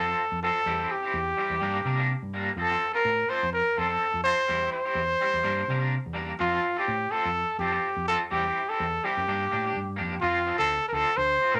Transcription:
Already playing: fingered electric bass F2, trumpet A4
0.07 clean electric guitar C4 F4 A4
0.32 fingered electric bass F2
0.43 clean electric guitar F3 C4 F4 A4, trumpet A4
0.66 fingered electric bass E2, clean electric guitar G3 C4 E4 G4
0.79 clean electric guitar C4 E4 G4
0.91 trumpet G4
1.03 clean electric guitar C4 E4 G4
1.13 fingered electric bass E2
1.37 clean electric guitar G3 C4 E4 G4
1.50 fingered electric bass E2
1.60 fingered electric bass G2, clean electric guitar G3 A#3 D4 A#4
1.85 fingered electric bass C3, clean electric guitar G3 A#3 D4 A#4
1.97 clean electric guitar A#3 D4 A#4
2.22 fingered electric bass G2
2.34 clean electric guitar G3 A#3 D4 A#4
2.56 fingered electric bass F2, clean electric guitar F3 C4 A4, muted clean electric guitar stroke
2.60 trumpet A4
2.69 clean electric guitar C4 F4 A4
2.93 clean electric guitar C4 F4 A4, trumpet A#4
3.05 fingered electric bass A2
3.28 clean electric guitar F3 C4 F4 A4, trumpet C5
3.43 fingered electric bass F2
3.52 trumpet A#4
3.76 fingered electric bass F2, clean electric guitar F3 C4 F4 A4, trumpet A4
3.89 clean electric guitar C4 A4, muted clean electric guitar stroke
4.14 fingered electric bass F2
4.23 clean electric guitar F3 C4 F4 A4, trumpet C5
4.48 fingered electric bass E2, clean electric guitar G3 C4 E4 G4
4.63 clean electric guitar C4 E4 G4
4.72 trumpet C5
4.85 clean electric guitar C4 E4 G4
4.95 fingered electric bass E2
5.21 clean electric guitar G3 C4 E4 G4
5.33 fingered electric bass E2
5.43 fingered electric bass G2, clean electric guitar G3 A#3 D4 A#4
5.68 fingered electric bass C3, clean electric guitar G3 A#3 D4 A#4
5.80 clean electric guitar A#3 D4 A#4
6.06 fingered electric bass E2
6.13 clean electric guitar G3 A#3 D4 A#4
6.39 fingered electric bass F2, clean electric guitar F3 C4 F4 A4, trumpet F4
6.52 clean electric guitar C4 F4 A4
6.77 clean electric guitar C4 F4 A4, trumpet G4
6.88 fingered electric bass A2
7.11 clean electric guitar F3 C4 F4 A4, trumpet A4
7.25 fingered electric bass F2
7.58 fingered electric bass F2, clean electric guitar F3 C4 F4 A4, trumpet G4
7.73 clean electric guitar C4 F4 A4
7.96 fingered electric bass F2
8.08 clean electric guitar F3 C4 F4 A4, trumpet A4
8.30 fingered electric bass E2, clean electric guitar G3 C4 E4 G4, trumpet G4
8.46 clean electric guitar C4 E4 G4
8.69 clean electric guitar C4 E4 G4, trumpet A4
8.80 fingered electric bass E2
9.04 clean electric guitar G3 C4 E4 G4, trumpet G4
9.17 fingered electric bass F#2
9.28 fingered electric bass G2, clean electric guitar A#3 D4 G4
9.51 fingered electric bass A2, clean electric guitar A#3 D4 G4
9.64 clean electric guitar D4 G4
9.76 fingered electric bass G2
9.96 fingered electric bass F2, clean electric guitar A#3 D4 G4
10.20 fingered electric bass F2, clean electric guitar F3 C4 F4, trumpet F4, muted clean electric guitar stroke
10.46 clean electric guitar F3 C4 F4 A4
10.58 fingered electric bass D2, clean electric guitar C4 F4 A4, trumpet A4
10.88 trumpet A#4
10.92 fingered electric bass D2, clean electric guitar F3 C4 F4 A4, trumpet A4
11.17 fingered electric bass D2, trumpet C5
11.41 clean electric guitar F3 C4 F4
11.52 fingered electric bass A2, clean electric guitar C4 F4 A4, trumpet A#4

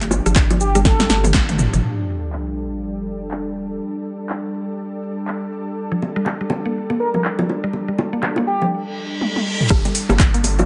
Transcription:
Already playing: analog synth bass G1, ambient pad F3 D4 G4
0.01 synth arpeggio sound A3, clap, closed hi-hat
0.11 high bongo, low bongo, shaker
0.26 analog synth bass G1, synth arpeggio sound F3, cross-stick, closed hi-hat, shaker
0.36 kick, clap, closed hi-hat, low bongo, shaker
0.50 synth arpeggio sound F3, closed hi-hat, high bongo
0.60 analog synth lead G4, shaker
0.75 synth arpeggio sound G3, cross-stick, closed hi-hat, low bongo, shaker
0.85 analog synth lead A4, kick, snare, closed hi-hat, shaker
0.99 synth arpeggio sound G3, snare, closed hi-hat, low bongo
1.10 analog synth bass G1, snare, shaker
1.24 synth arpeggio sound A3, closed hi-hat, mid tom, low bongo, shaker
1.34 kick, snare, clap, closed hi-hat, shaker
1.49 synth arpeggio sound A3, closed hi-hat, mid tom
1.58 mid tom, low bongo, shaker
1.73 analog synth bass G1, synth arpeggio sound F3, closed hi-hat, mid tom, shaker
1.83 ambient pad G3 D4 A4, crash, sub drop
2.08 shaker
2.33 clap
2.57 shaker
2.72 shaker
2.82 shaker
3.06 shaker
3.21 shaker
3.31 clap
3.56 shaker
3.70 shaker
3.80 shaker
4.05 shaker
4.20 shaker
4.29 clap, shaker
4.54 shaker
4.69 shaker
4.79 shaker
5.03 shaker
5.18 shaker
5.28 clap, shaker
5.52 shaker
5.67 shaker
5.77 shaker
5.92 synth arpeggio sound F3
6.01 low bongo, shaker
6.16 synth arpeggio sound G3, shaker
6.26 clap, low bongo
6.41 synth arpeggio sound G3
6.50 low bongo, shaker
6.66 synth arpeggio sound A#3, shaker
6.75 shaker
6.90 synth arpeggio sound A#3, low bongo
7.00 analog synth lead A#4, shaker
7.14 synth arpeggio sound F3, analog synth lead A#4, low bongo, shaker
7.25 clap, shaker
7.39 synth arpeggio sound F3, high bongo, low bongo
7.49 high bongo, shaker
7.64 synth arpeggio sound G3, shaker
7.73 low bongo, shaker
7.88 synth arpeggio sound G3
7.98 high bongo, low bongo, shaker
8.13 synth arpeggio sound A#3, shaker
8.23 clap, low bongo
8.36 synth arpeggio sound A#3, high bongo
8.47 analog synth lead G4, shaker
8.62 synth arpeggio sound F3, low bongo, shaker
8.72 reverse cymbal
9.21 high tom
9.36 high tom
9.61 mid tom
9.70 analog synth bass G1, ambient pad G3 D4 A5, kick, cross-stick, closed hi-hat, downlifter, shaker
9.85 synth arpeggio sound G3, closed hi-hat, low bongo, shaker
9.95 open hi-hat, shaker
10.09 analog synth bass G1, synth arpeggio sound A#3, cross-stick, low bongo, shaker
10.19 kick, clap, closed hi-hat, shaker
10.34 synth arpeggio sound A#3, closed hi-hat, shaker
10.44 open hi-hat, low bongo, shaker
10.59 synth arpeggio sound F3, high bongo, shaker

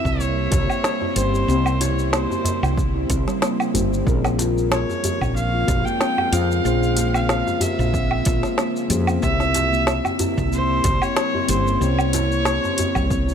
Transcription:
Already playing: synth drone C#3 G3 A#3 C4 E4, synth keys A#3 C4 E4 G4, kamancheh E5
0.04 fretless electric bass C2, kick, djembe tone, shaker
0.20 steel tongue drum A#3, kamancheh C#5, shaker
0.51 fretless electric bass C2, steel tongue drum A#3, kick, closed hi-hat, djembe bass, shaker
0.68 steel tongue drum C4, djembe tone, low woodblock, shaker
0.84 snare, shaker
1.01 steel tongue drum E4, djembe tone
1.15 fretless electric bass G1, synth keys A#3 C#4 E4 G4 C5, kamancheh C5, closed hi-hat, shaker
1.34 steel tongue drum G4, shaker
1.47 fretless electric bass C2, synth keys A#3 E4 G4, steel tongue drum C4, djembe slap, shaker
1.51 synth keys C4
1.66 low woodblock, shaker
1.81 steel tongue drum E4, kamancheh C#5, closed hi-hat, djembe slap, shaker
1.99 shaker
2.13 steel tongue drum A#3, kamancheh C5, snare, shaker
2.30 djembe tone, shaker
2.45 steel tongue drum A#3, closed hi-hat, djembe tone, djembe bass, shaker
2.62 fretless electric bass C2, steel tongue drum C4, djembe slap, djembe tone, low woodblock, shaker
2.77 kick, shaker
2.95 steel tongue drum E4
3.10 fretless electric bass C2, kick, closed hi-hat, shaker
3.27 steel tongue drum G3, snare, shaker
3.42 steel tongue drum A#3, snare, shaker
3.60 low woodblock, shaker
3.74 fretless electric bass G1, synth keys A#3 C#4 E4 G4 C5, steel tongue drum E4, closed hi-hat, djembe bass, shaker
3.93 shaker
4.05 fretless electric bass A#1, synth drone F3 G#3 F4, synth keys A#3 F4 G#4 A#4, steel tongue drum C4, kick, djembe slap, shaker
4.25 snare, low woodblock, shaker
4.39 steel tongue drum F4, closed hi-hat, djembe slap, shaker
4.58 shaker
4.71 steel tongue drum A#3, kamancheh C#5, snare, shaker
4.89 djembe tone, shaker
5.03 steel tongue drum A#3, closed hi-hat, djembe tone, djembe bass, shaker
5.21 fretless electric bass A#1, steel tongue drum C4, kick, djembe tone, low woodblock, shaker
5.36 kamancheh F5, shaker
5.54 steel tongue drum F4
5.68 fretless electric bass A#1, kick, closed hi-hat, djembe bass, shaker
5.85 steel tongue drum A#3, kamancheh G5, djembe tone, shaker
6.01 steel tongue drum C4, snare, shaker
6.18 djembe tone, low woodblock
6.31 fretless electric bass F2, synth keys A#3 C#4 F4 G#4 C5, steel tongue drum F4, kamancheh F5, closed hi-hat, shaker
6.51 shaker
6.63 fretless electric bass A#1, synth keys A#3 F4 G#4, steel tongue drum A#3, djembe slap, shaker
6.67 synth keys C5
6.83 shaker
6.96 steel tongue drum A#3, closed hi-hat, djembe slap, shaker
7.14 steel tongue drum C4, kamancheh F5, low woodblock, shaker
7.29 snare, shaker
7.47 steel tongue drum F4, djembe tone, shaker
7.60 kamancheh E5, closed hi-hat, djembe tone, djembe bass, shaker
7.79 fretless electric bass A#1, steel tongue drum A#3, djembe tone, shaker
7.94 steel tongue drum C4, kick, shaker
8.11 low woodblock
8.25 fretless electric bass A#1, steel tongue drum F4, kick, closed hi-hat, shaker
8.43 snare, shaker
8.58 steel tongue drum A#3, snare, shaker
8.76 shaker
8.89 fretless electric bass F2, synth keys A#3 C#4 F4 G#4 C5, steel tongue drum A#3, closed hi-hat, djembe bass, shaker
9.07 steel tongue drum C4, low woodblock, shaker
9.20 fretless electric bass C2, synth drone G3 A#3 C4 E4, synth keys A#3 C4 E4 G4, kamancheh E5, kick, djembe slap, shaker
9.40 steel tongue drum E4, snare, shaker
9.54 closed hi-hat, djembe slap, shaker
9.72 steel tongue drum A#3, shaker
9.87 steel tongue drum C4, snare, shaker
10.05 djembe tone, low woodblock, shaker
10.19 steel tongue drum E4, closed hi-hat, djembe tone, djembe bass, shaker
10.38 fretless electric bass C2, kick, djembe tone, shaker
10.52 steel tongue drum A#3, kamancheh C5, shaker
10.84 fretless electric bass C2, steel tongue drum A#3, kick, closed hi-hat, djembe bass, shaker
11.02 steel tongue drum C4, kamancheh C#5, djembe tone, low woodblock, shaker
11.17 snare, shaker
11.34 steel tongue drum E4, djembe tone
11.48 fretless electric bass G1, synth keys A#3 C#4 E4 G4 C5, kamancheh C5, closed hi-hat, shaker
11.66 steel tongue drum A#3, shaker
11.80 fretless electric bass C2, synth keys A#3 C4 E4 G4, steel tongue drum C4, kamancheh C#5, djembe slap, shaker
11.99 low woodblock, shaker
12.13 steel tongue drum E4, closed hi-hat, djembe slap, shaker
12.32 shaker
12.45 steel tongue drum A#3, snare, shaker
12.64 djembe tone, shaker
12.78 steel tongue drum A#3, closed hi-hat, djembe tone, djembe bass, shaker
12.95 fretless electric bass C2, steel tongue drum C4, kick, djembe slap, djembe tone, low woodblock, shaker
13.11 kick, shaker
13.27 steel tongue drum E4, shaker

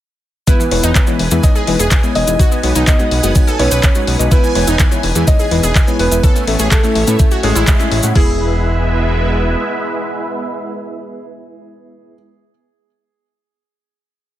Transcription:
0.47 synth stab G#3 B3 E4 B4, grand piano B3 B4, synth pluck E4, supersaw synth G#5, synth texture G#5 G#6, kick, closed hi-hat, cabasa
0.59 synth pluck E3, cabasa
0.71 analog synth bass E1, synth pluck E3, synth stab G#3 B3 E4 C#5, open hi-hat
0.83 analog synth bass E1, synth pluck D#4, closed hi-hat, cabasa
0.95 synth pluck E3, kick, clap, closed hi-hat, cabasa
1.07 synth pluck E3, synth stab G#3 B3 E4 C#5, closed hi-hat, cabasa
1.19 analog synth bass E1, open hi-hat
1.31 analog synth bass E2, synth pluck E3, synth stab G#3 B3 E4 G#4, closed hi-hat, cabasa
1.43 synth pluck E3, synth stab G#3 B3 E4 C#5, grand piano D#4 D#5, kick, closed hi-hat, cabasa
1.55 synth pluck G#4, cabasa
1.67 analog synth bass E1, synth pluck E3, synth stab G#3 B3 E4 B4, open hi-hat
1.79 analog synth bass E1, synth pluck G#4, closed hi-hat, cabasa
1.91 kick, clap, closed hi-hat, cabasa
2.03 synth stab G#3 B3 E4 C#5, closed hi-hat, cabasa
2.15 analog synth bass E1, grand piano D#4 D#5, open hi-hat
2.27 analog synth bass E1, synth stab G#3 B3 E4 E5, closed hi-hat, cabasa
2.39 synth stab G#3 D#4 F#4 B4, synth pluck F#4, supersaw synth B4 F#5 D#6, kick, closed hi-hat, cabasa
2.51 synth pluck B3, cabasa
2.63 analog synth bass B1, synth stab G#3 D#4 F#4 C#5, synth pluck B3, open hi-hat
2.75 analog synth bass B1, synth pluck D#4, closed hi-hat, cabasa
2.87 synth pluck B3, grand piano D#4 D#5, kick, clap, closed hi-hat, cabasa
2.99 synth stab G#3 D#4 F#4 C#5, synth pluck B3, closed hi-hat, cabasa
3.11 analog synth bass B1, open hi-hat
3.23 analog synth bass F#1, synth stab G#3 D#4 F#4 G#4, synth pluck B3, closed hi-hat, cabasa
3.35 synth stab G#3 D#4 F#4 C#5, synth pluck B3, kick, closed hi-hat, cabasa
3.47 synth pluck A4, cabasa
3.59 analog synth bass B1, synth stab G#3 D#4 F#4 B4, synth pluck B3, grand piano C#4 C#5, open hi-hat
3.71 analog synth bass B1, synth pluck B4, closed hi-hat, cabasa
3.83 kick, clap, closed hi-hat, cabasa
3.95 synth stab G#3 D#4 F#4 C#5, closed hi-hat, cabasa
4.07 analog synth bass B1, open hi-hat
4.19 analog synth bass B1, synth stab G#3 D#4 F#4 D#5, closed hi-hat, cabasa
4.31 synth stab B3 B4, grand piano B3 B4, synth pluck E4, supersaw synth G#5, kick, closed hi-hat, cabasa
4.43 synth pluck E3, cabasa
4.55 analog synth bass E1, synth pluck E3, synth stab G#3 B3 E4 C#5, open hi-hat
4.67 analog synth bass E1, synth pluck D#4, closed hi-hat, cabasa
4.79 synth pluck E3, kick, clap, closed hi-hat, cabasa
4.91 synth pluck E3, synth stab G#3 B3 E4 C#5, closed hi-hat, cabasa
5.03 analog synth bass E1, open hi-hat
5.15 analog synth bass E2, synth pluck E3, synth stab G#3 B3 E4 G#4, closed hi-hat, cabasa
5.27 synth pluck E3, synth stab G#3 B3 E4 C#5, grand piano D#4 D#5, kick, closed hi-hat, cabasa
5.39 synth pluck G#4, cabasa
5.51 analog synth bass E1, synth pluck E3, synth stab G#3 B3 E4 B4, open hi-hat
5.63 analog synth bass E1, synth pluck G#4, closed hi-hat, cabasa
5.75 kick, clap, closed hi-hat, cabasa
5.87 synth stab G#3 B3 E4 C#5, closed hi-hat, cabasa
5.99 analog synth bass E1, grand piano B3 B4, open hi-hat
6.11 analog synth bass E1, synth stab G#3 B3 E4 E5, closed hi-hat, cabasa
6.23 synth stab A3 C#4 E4 C#5, synth pluck A4, supersaw synth C#5 E5, kick, closed hi-hat, cabasa
6.35 synth pluck A3, cabasa
6.47 analog synth bass A1, synth pluck A3, synth stab A3 C#4 E4 E5, open hi-hat
6.59 analog synth bass A1, synth pluck G#4, closed hi-hat, cabasa
6.71 synth pluck A3, grand piano A3 A4, kick, clap, closed hi-hat, cabasa
6.83 synth pluck A3, synth stab A3 C#4 E4 E5, closed hi-hat, cabasa
6.95 analog synth bass A1, open hi-hat
7.07 analog synth bass A2, synth pluck A3, synth stab A3 C#4 E4 B4, closed hi-hat, cabasa
7.19 synth pluck A3, synth stab A3 C#4 E4 E5, kick, closed hi-hat, cabasa
7.31 synth pluck F#4, cabasa
7.43 analog synth bass A1, grand piano G#3 G#4, synth pluck A3, synth stab A3 C#4 E4 C#5, open hi-hat
7.55 analog synth bass A1, synth pluck E4, closed hi-hat, cabasa
7.67 kick, clap, closed hi-hat, cabasa
7.79 synth stab A3 C#4 E4 E5, closed hi-hat, cabasa
7.92 analog synth bass A1, open hi-hat
8.03 analog synth bass A2, synth stab A3 C#4 E4 F#5, closed hi-hat, cabasa
8.15 analog synth bass E1, supersaw synth G#3 B3 E4 B4 E5, synth stab G#3 B3 E4 B4, synth pluck E4, grand piano G#4, kick, crash

